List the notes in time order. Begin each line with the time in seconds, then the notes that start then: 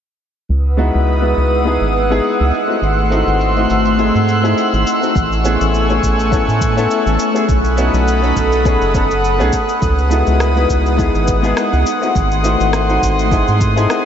0.48 C#2 B4 F#5 D#6 E6 F#6, shaker
0.66 shaker
0.77 G#3 B3 D#4 E4 F#4, shaker
0.94 C#2, shaker
1.08 shaker
1.22 G#3 B3 D#4 E4 F#4
1.37 C#2, shaker
1.53 shaker
1.65 G#3 B3 D#4 E4 G#4, shaker
1.80 G#1, shaker
1.95 shaker
2.10 G#3 B3 D#4 E4 G#4, shaker
2.24 shaker
2.40 C#2, shaker
2.54 A3 C6, shaker
2.67 A3 C4 D#4 E4 F#4, shaker
2.82 G#1, shaker
2.99 shaker
3.10 A3 C4 D#4 E4 F#4, shaker
3.26 G#1, shaker
3.40 shaker
3.56 A3 C4 D#4 E4 F#4, shaker
3.70 G#1, shaker
3.85 shaker
3.97 A3 C4 D#4 E4 G#4, shaker
4.15 G#2, shaker
4.28 shaker
4.42 A3 C4 D#4 E4 G#4, shaker
4.58 shaker
4.73 G#1, shaker
4.87 shaker
5.01 A3 C4 D#4 E4 F#4, shaker
5.15 A1 A3 G#5 C#6, kick, shaker
5.32 shaker
5.44 A3 B3 C#4 E4 G#4, shaker
5.61 A1, shaker
5.74 shaker
5.89 A3 B3 C#4 E4 G#4, shaker
6.03 A1, kick, shaker
6.19 shaker
6.31 A3 B3 C#4 E4 A4, kick, shaker
6.48 A2, shaker
6.61 kick, shaker
6.76 A3 B3 C#4 E4 A4, shaker
6.91 shaker
7.06 A1, shaker
7.19 shaker
7.33 A3 B3 C#4 E4 G#4, shaker
7.48 B1 A4 F#5 B5 D#6, kick, shaker
7.64 shaker
7.76 A3 B3 C#4 D#4 F#4, shaker
7.93 B1, shaker
8.08 shaker
8.22 A3 B3 C#4 D#4 F#4, shaker
8.36 B1, kick, shaker
8.52 shaker
8.64 A3 B3 C#4 D#4 G#4, kick, shaker
8.81 F#1, shaker
8.94 A3 B3 C#4 D#4 A4, kick, shaker
9.11 shaker
9.24 shaker
9.38 B1 A3 B3 C#4 D#4 G#4, shaker
9.52 kick, shaker
9.69 shaker
9.82 C#2 B4 F#5 D#6, kick, shaker
9.99 shaker
10.10 G#3 B3 D#4 E4 F#4, shaker
10.27 C#2, shaker
10.40 cross-stick, shaker
10.55 G#3 B3 D#4 E4 F#4, shaker
10.70 C#2, kick, shaker
10.86 shaker
10.97 G#3 B3 D#4 E4 G#4, kick, shaker
11.15 G#1, shaker
11.28 kick, shaker
11.42 G#3 B3 D#4 E4 G#4, shaker
11.57 cross-stick, shaker
11.73 C#2, shaker
11.86 A3 C6, shaker
12.00 A3 C4 D#4 E4 F#4, shaker
12.15 G#1, kick, shaker
12.32 shaker
12.43 A3 C4 D#4 E4 F#4, shaker
12.60 G#1, shaker
12.73 cross-stick, shaker
12.88 A3 C4 D#4 E4 F#4, shaker
13.02 G#1, kick, shaker
13.19 shaker
13.31 A3 C4 D#4 E4 G#4, kick, shaker
13.48 G#2, shaker
13.61 kick, shaker
13.75 A3 C4 D#4 E4 G#4, shaker
13.90 cross-stick, shaker